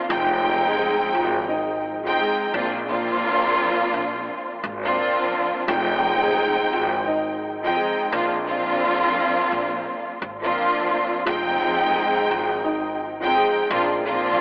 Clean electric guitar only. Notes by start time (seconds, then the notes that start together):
0.09 F3 F4
0.67 G#3 G#4
0.79 G#3 G#4
1.14 F3 F4
1.48 D#4 D#5
2.04 F3 F4
2.20 G#3 G#4
5.68 F3 F4
6.23 G#3 G#4
6.37 G#3 G#4
6.73 F3 F4
7.06 D#4 D#5
7.64 F3 F4
7.77 G#3 G#4
11.26 F3 F4
11.84 G#3 G#4
11.95 G#3 G#4
12.30 F3 F4
12.64 D#4 D#5
13.20 F3 F4
13.36 G#3 G#4